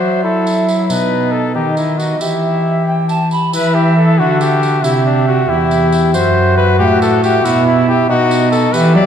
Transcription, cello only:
Already playing: F#3
0.90 B2
1.55 D#3
2.20 E3
3.54 E3
4.19 D3
4.84 C3
5.49 E2
6.14 F#2
6.79 A2
7.44 B2
8.10 B2
8.74 E3
8.95 F#3

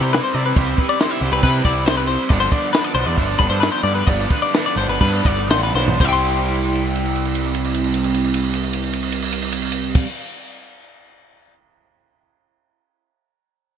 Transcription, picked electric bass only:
0.01 C3
0.35 C3
0.56 C2
1.21 C2
1.32 C2
1.43 C3
1.65 C2
2.30 G1
2.95 B1
3.06 E2
3.18 G1
3.40 G1
3.50 G2
3.84 G2
4.07 G1
4.76 G1
4.88 G1
5.01 G2
5.25 G1
5.49 A1
5.74 B1
6.00 C2

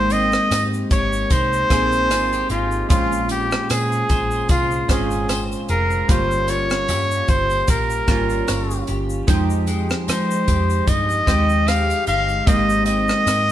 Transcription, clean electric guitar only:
Already playing: G#3 D#4
0.12 C4
0.51 D#4
0.91 G4
1.30 D#4
1.70 C4
2.11 F4
2.33 G4
2.51 D#4
2.90 A#2
3.30 C#4
3.71 G#4
4.10 C5
4.50 G#4
4.90 C#4
5.30 C5
5.70 G#4
6.10 G3
6.49 F4
6.89 G4
7.69 G4
8.08 F4
8.48 C#5
8.88 G4
9.28 F3
9.67 G#3
10.08 D#4
10.48 G4
10.88 D#4
11.27 G#3
11.67 G4
12.07 D#4
12.47 G#3
12.87 C4
13.27 D#4

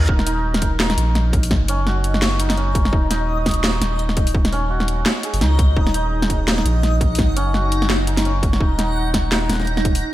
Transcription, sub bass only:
0.09 D#1
0.97 A#1
1.61 F#1
2.93 D#1
3.81 D#1
4.35 D#1
5.34 F#1
5.41 C#2
5.77 D#1
6.65 A#1
7.29 F#1
8.61 D#1
9.49 D#1

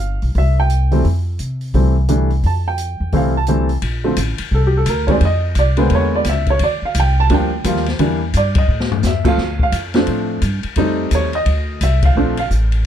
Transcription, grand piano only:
Already playing: F5
0.38 E5
0.60 G5
0.91 E3 G3 A3 C4
1.74 E3 G3 A3 C4
2.09 E3 G3 A3 D4
2.46 A5
2.68 G5
3.13 E3 G3 A3 C4 F5
3.37 A5
3.48 E3 G3 A3 C4
4.04 D3 F3 A3 C4
4.54 A4
4.67 G4
4.77 A4
4.89 A#4
5.08 D#3 G3 G#3 C4 D5
5.25 D#5
5.59 D5
5.77 D3 G#3 A#3 B3 C5
5.95 C#5
6.15 D5
6.29 E5
6.50 C#5
6.63 D5
6.85 F5
7.00 G5
7.20 A5
7.30 F3 G3 A#3 D4
7.34 G5
7.65 F3 G3 A#3 F4
7.99 E3 G3 A#3 D4
8.37 D5
8.58 D#5
9.07 E5
9.25 F3 A3 C4 F4 F5
9.63 F5
9.95 F3 A3 C4 D4
10.77 G3 A3 C4 D#4
11.15 C#5
11.35 D#5
11.83 E5
12.05 F5
12.17 F3 A3 C4 D4
12.39 F5

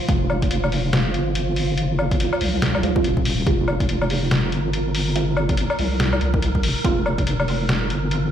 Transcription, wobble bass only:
0.09 F1
1.14 G1
2.41 C2
2.83 C2
3.04 D#1
3.47 F1
4.52 G1
5.79 C2
6.21 C2
6.63 F1
6.84 F1
7.90 G1

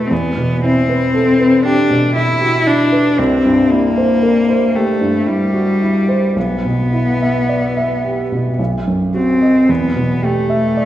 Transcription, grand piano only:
Already playing: B2 E4 F#4 G4 B4
0.11 E2
0.37 B2
0.64 E4
0.89 B4
1.14 A4
1.40 B4
1.65 G4
1.90 B2
2.16 E4
2.41 F#4
2.67 E4
2.92 B4
3.18 C2
3.45 G2
3.71 E4
3.97 C5
4.23 A#4
4.49 C5
4.75 G4
5.01 G2
5.26 E4
5.54 F#4
5.82 E4
6.09 C5
6.36 B1
6.65 B2
6.93 E4
7.22 E5
7.49 D5
7.77 E5
8.05 G4
8.32 B2
8.59 B1
8.87 F#2
9.14 F#4
9.42 D#5
9.69 E2
9.96 B2
10.22 G4
10.50 E5
10.77 D5

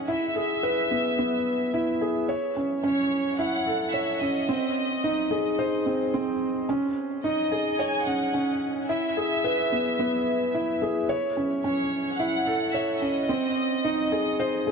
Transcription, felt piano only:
Already playing: C#4 G#4 C#5
0.08 E4
0.36 G#4
0.63 B4
0.91 B3
1.19 B3
1.74 E4
2.01 G#4
2.29 C#5
2.56 C#4
2.83 C#4
3.39 E4
3.66 A4
3.94 C#5
4.21 C#4
4.49 C4
5.04 D#4
5.31 G#4
5.59 C5
5.86 C4
6.14 C4
6.69 C#4
7.24 D#4
7.52 G#4
7.79 C#5
8.07 C#4
8.34 C#4
8.89 E4
9.17 G#4
9.44 B4
9.72 B3
9.99 B3
10.54 E4
10.82 G#4
11.09 C#5
11.37 C#4
11.64 C#4
12.19 E4
12.47 A4
12.74 C#5
13.02 C#4
13.29 C4
13.85 D#4
14.12 G#4
14.40 C5
14.67 G#4

